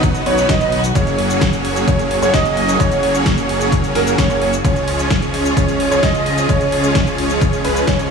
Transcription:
Already playing: analog synth bass B1, string section D#3 F#3 C#4 F#4, supersaw synth F#3 B3 D#4 B4 D#5, grand piano D#5
0.03 kick, closed hi-hat, cabasa
0.15 closed hi-hat, cabasa
0.26 analog synth bass B1, supersaw synth F#3 B3 D#4 B4 C#5, grand piano C#5, open hi-hat
0.38 closed hi-hat, cabasa
0.49 analog synth bass B1, supersaw synth F#3 B3 D#4 B4 D#5, grand piano D#5, kick, snare, closed hi-hat, cabasa
0.61 analog synth bass B1, supersaw synth F#3 B3 D#4 B4 D#5, grand piano D#5, closed hi-hat, cabasa
0.72 open hi-hat
0.84 closed hi-hat, cabasa
0.95 analog synth bass F#1, string section C#3 G#3 A#3, supersaw synth F#3 A#3 C#4 G#4 C#5, grand piano C#5, kick, closed hi-hat, cabasa
1.07 closed hi-hat, cabasa
1.19 open hi-hat
1.30 closed hi-hat, cabasa
1.41 kick, snare, closed hi-hat, cabasa
1.53 closed hi-hat, cabasa
1.65 open hi-hat
1.76 closed hi-hat, cabasa
1.88 analog synth bass F#1, supersaw synth F#3 A#3 C#4 G#4 C#5, grand piano C#5, kick, closed hi-hat, cabasa
1.99 closed hi-hat, cabasa
2.11 open hi-hat
2.22 analog synth bass F#1, supersaw synth F#3 A#3 C#4 G#4 C#5, grand piano C#5, closed hi-hat, cabasa
2.34 analog synth bass F#1, supersaw synth F#3 A#3 C#4 G#4 D#5, grand piano D#5, kick, snare, closed hi-hat, cabasa
2.45 closed hi-hat, cabasa
2.57 open hi-hat
2.69 closed hi-hat, cabasa
2.80 analog synth bass F#1, supersaw synth F#3 A#3 C#4 G#4 C#5, grand piano C#5, kick, closed hi-hat, cabasa
2.92 closed hi-hat, cabasa
3.03 open hi-hat
3.15 closed hi-hat, cabasa
3.26 kick, snare, closed hi-hat, cabasa
3.38 closed hi-hat, cabasa
3.49 open hi-hat
3.61 closed hi-hat, cabasa
3.72 kick, closed hi-hat, cabasa
3.84 closed hi-hat, cabasa
3.95 analog synth bass F#1, supersaw synth F#3 A#3 C#4 G#4 A#4, grand piano A#4, snare, open hi-hat
4.07 closed hi-hat, cabasa
4.18 analog synth bass F#1, supersaw synth F#3 A#3 C#4 G#4 C#5, grand piano C#5, kick, snare, closed hi-hat, cabasa
4.30 analog synth bass F#1, supersaw synth F#3 A#3 C#4 G#4 C#5, grand piano C#5, closed hi-hat, cabasa
4.42 open hi-hat
4.53 closed hi-hat, cabasa
4.65 analog synth bass C#2, supersaw synth F3 G#3 C#4 G#4 C#5, string section F3 F4, grand piano C#5, kick, closed hi-hat, cabasa
4.76 closed hi-hat, cabasa
4.88 open hi-hat
4.99 closed hi-hat, cabasa
5.11 kick, snare, closed hi-hat, cabasa
5.22 closed hi-hat, cabasa
5.34 open hi-hat
5.45 closed hi-hat, cabasa
5.57 analog synth bass C#2, supersaw synth F3 G#3 C#4 G#4 C#5, grand piano C#5, kick, closed hi-hat, cabasa
5.68 closed hi-hat, cabasa
5.80 open hi-hat
5.91 analog synth bass C#2, supersaw synth F3 G#3 C#4 G#4 C#5, grand piano C#5, closed hi-hat, cabasa
6.03 analog synth bass C#2, supersaw synth F3 G#3 C#4 D#5, grand piano D#5, kick, snare, closed hi-hat, cabasa
6.15 closed hi-hat, cabasa
6.26 open hi-hat
6.38 closed hi-hat, cabasa
6.49 analog synth bass C#2, supersaw synth F3 G#3 C#4 G#4 C#5, grand piano C#5, kick, closed hi-hat, cabasa
6.61 closed hi-hat, cabasa
6.72 open hi-hat
6.84 closed hi-hat, cabasa
6.95 kick, snare, closed hi-hat, cabasa
7.07 closed hi-hat, cabasa
7.18 open hi-hat
7.30 closed hi-hat, cabasa
7.42 kick, closed hi-hat, cabasa
7.53 closed hi-hat, cabasa
7.65 analog synth bass C#2, supersaw synth F3 G#3 C#4 G#4 B4, grand piano B4, open hi-hat
7.76 closed hi-hat, cabasa
7.87 analog synth bass C#2, supersaw synth F3 G#3 C#4 C#5, grand piano C#5, kick, snare, closed hi-hat, cabasa
7.99 analog synth bass C#2, supersaw synth F3 G#3 C#4 G#4 C#5, grand piano C#5, closed hi-hat, cabasa

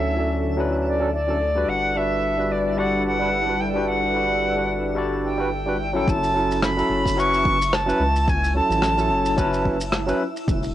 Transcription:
Already playing: analog synth bass D2, analog synth pad D3 A3 E4 A4, tine electric piano F#3 C#4 D4 A4, synth texture E4 E5, flute E5
0.16 tine electric piano F#3 C#4 D4 A4
0.57 tine electric piano F#3 C#4 D4 B4
0.88 flute D5
0.99 tine electric piano F#3 C#4 D4 A4
1.14 flute D5
1.28 tine electric piano F#3 C#4 D4 A4
1.55 tine electric piano G3 D4 F#4 B4
1.67 analog synth bass G1, analog synth pad G3 D4 A4 B4, flute F#5
1.95 tine electric piano G3 D4 F#4 B4, flute E5
2.37 tine electric piano G3 D4 F#4 B4
2.52 flute D5
2.77 tine electric piano G3 D4 F#4 D5, flute F#5
3.07 flute F#5
3.19 tine electric piano G3 D4 F#4 B4
3.46 tine electric piano G3 D4 F#4 B4
3.61 flute G5
3.74 tine electric piano G3 D4 F#4 B4
3.88 flute F#5
4.14 tine electric piano G3 D4 F#4 B4
4.56 tine electric piano G3 D4 F#4 B4
4.95 tine electric piano G3 D4 F#4 D5
5.25 flute G5
5.38 tine electric piano G3 D4 F#4 B4
5.66 tine electric piano G3 D4 F#4 B4
5.93 tine electric piano F#3 C#4 E4 A4
6.07 analog synth bass F#1, synth texture E4 E5, flute A5, kick, shaker
6.23 open hi-hat, shaker
6.34 tine electric piano F#3 C#4 E4 A4
6.51 open hi-hat, shaker
6.62 flute B5, cross-stick, shaker
6.77 tine electric piano F#3 C#4 E4 A4, open hi-hat, shaker
6.90 analog synth bass F#1
7.06 kick, open hi-hat, shaker
7.17 tine electric piano F#3 C#4 E4 B4, flute C#6, shaker
7.33 open hi-hat, shaker
7.45 kick
7.61 open hi-hat, shaker
7.73 flute A5, cross-stick, shaker
7.86 tine electric piano F#3 C#4 E4 B4, open hi-hat, shaker
8.00 analog synth bass C#2
8.15 open hi-hat, shaker
8.28 flute G#5, kick, shaker
8.43 open hi-hat, shaker
8.54 tine electric piano F#3 C#4 E4 A4, flute A5
8.70 analog synth bass A1, open hi-hat, shaker
8.82 cross-stick, shaker
8.97 tine electric piano F#3 C#4 E4 A4, open hi-hat, shaker
9.10 analog synth bass F#1
9.25 open hi-hat, shaker
9.36 tine electric piano F#3 C#4 E4 B4, kick, shaker
9.53 open hi-hat, shaker
9.65 kick
9.80 open hi-hat, shaker
9.92 cross-stick, shaker
10.07 tine electric piano F#3 C#4 E4 B4, open hi-hat, shaker
10.36 open hi-hat, shaker
10.47 analog synth bass E1, kick, shaker
10.62 open hi-hat, shaker

